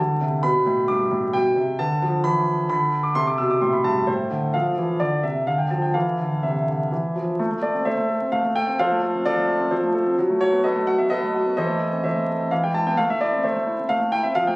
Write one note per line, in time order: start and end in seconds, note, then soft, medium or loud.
0.00 0.20 D3 medium
0.00 0.43 A5 medium
0.21 0.43 C3 medium
0.43 0.65 B2 medium
0.43 1.76 B4 soft
0.43 0.88 B5 medium
0.66 0.88 A2 medium
0.88 1.10 G2 medium
0.88 1.34 D6 medium
1.11 1.33 A2 medium
1.33 1.56 B2 medium
1.33 1.79 G5 medium
1.56 1.78 C3 medium
1.79 2.01 D3 medium
1.79 2.66 B4 soft
1.79 2.24 A5 medium
2.02 2.24 F3 medium
2.24 2.57 E3 medium
2.24 2.68 B5 medium
2.70 3.03 D3 medium
2.70 3.04 B5 medium
3.03 3.15 D6 medium
3.15 3.37 C3 medium
3.15 4.04 A4 soft
3.15 3.27 C6 loud
3.27 3.39 D6 medium
3.38 3.61 B2 medium
3.38 3.50 E6 medium
3.50 3.62 D6 medium
3.61 3.84 A2 medium
3.61 3.73 C6 medium
3.73 3.85 B5 medium
3.84 4.07 G2 medium
3.84 4.08 A5 medium
4.07 4.30 A2 medium
4.07 4.54 C5 medium
4.31 4.53 D3 medium
4.54 4.76 F3 medium
4.54 5.43 A4 soft
4.54 5.00 F5 medium
4.78 5.00 E3 medium
5.00 5.22 D3 medium
5.00 5.23 D5 medium
5.23 5.46 C3 medium
5.23 5.47 E5 medium
5.47 5.70 D3 medium
5.47 5.59 F5 medium
5.58 5.71 G5 medium
5.71 5.94 F3 medium
5.71 5.83 A5 medium
5.82 5.95 G5 medium
5.94 6.18 E3 medium
5.94 6.87 A4 soft
5.94 6.43 F5 medium
6.20 6.42 D3 soft
6.43 6.67 C3 medium
6.43 7.15 E5 medium
6.68 6.90 D3 soft
6.92 7.14 E3 medium
7.16 7.38 F3 medium
7.39 7.50 A3 medium
7.51 7.70 A3 soft
7.62 7.82 A4 soft
7.62 7.86 D5 medium
7.74 7.93 C4 soft
7.85 7.96 A3 medium
7.85 8.09 A4 medium
7.85 8.30 C5 medium
7.85 8.32 E5 medium
7.98 8.17 A3 soft
8.10 8.29 A4 soft
8.21 8.40 C4 medium
8.32 8.43 A3 medium
8.32 8.56 F5 medium
8.44 8.63 A3 soft
8.56 8.75 A4 medium
8.56 8.79 G5 medium
8.67 8.79 C4 medium
8.79 9.24 F3 medium
8.79 9.01 A4 medium
8.79 9.23 C5 medium
8.79 9.26 F5 loud
8.91 9.10 A3 medium
9.02 9.21 A4 medium
9.14 9.33 C4 medium
9.25 9.70 F3 medium
9.25 9.69 F4 medium
9.25 9.47 A4 medium
9.25 9.71 D5 loud
9.37 9.55 A3 medium
9.48 9.67 A4 medium
9.60 9.78 C4 medium
9.71 10.16 F3 medium
9.71 10.15 F4 medium
9.71 9.93 A4 medium
9.71 10.17 C5 medium
9.83 10.02 A3 medium
9.94 10.13 A4 medium
10.07 10.18 C4 medium
10.19 10.63 F#3 medium
10.30 10.48 A3 medium
10.41 10.59 F#4 medium
10.41 10.63 C#5 loud
10.52 10.70 B3 medium
10.64 11.09 F#3 medium
10.64 10.86 A4 medium
10.64 10.86 B4 medium
10.64 10.87 D#5 medium
10.75 10.94 A3 medium
10.87 11.05 F#4 medium
10.87 10.98 F#5 medium
10.98 11.17 B3 medium
10.98 11.10 E5 medium
11.10 11.55 F#3 medium
11.10 11.54 A4 medium
11.10 11.54 B4 medium
11.10 11.55 D#5 loud
11.23 11.40 A3 soft
11.34 11.52 F#4 medium
11.46 11.57 B3 medium
11.57 12.03 E3 medium
11.57 11.79 A4 medium
11.57 12.01 C5 medium
11.57 12.04 D#5 medium
11.69 11.87 A3 soft
11.80 11.99 A4 soft
11.92 12.11 C4 soft
12.04 12.50 E3 medium
12.04 12.26 A4 soft
12.04 12.48 C5 medium
12.04 12.51 E5 medium
12.16 12.35 A3 soft
12.28 12.46 A4 soft
12.39 12.51 C4 soft
12.51 12.97 E3 medium
12.51 12.63 F5 medium
12.63 12.81 G#3 soft
12.63 12.75 G5 medium
12.74 12.93 E4 soft
12.74 12.86 A5 medium
12.86 12.98 B3 soft
12.86 12.98 G5 medium
12.97 13.08 A3 medium
12.97 13.09 F5 loud
13.09 13.28 A3 soft
13.09 13.21 E5 medium
13.21 13.39 E4 medium
13.21 13.44 D5 medium
13.32 13.51 C4 medium
13.43 13.54 A3 medium
13.43 13.87 A4 medium
13.43 13.87 C5 medium
13.43 13.90 E5 medium
13.55 13.74 A3 soft
13.67 13.85 E4 medium
13.79 13.97 C4 soft
13.89 14.00 A3 medium
13.89 14.12 F5 medium
14.01 14.20 A3 soft
14.12 14.31 E4 medium
14.12 14.24 G5 medium
14.23 14.36 C4 medium
14.23 14.35 E5 medium
14.35 14.56 F3 medium
14.35 14.47 F5 loud
14.47 14.56 A3 medium
14.47 14.56 G5 medium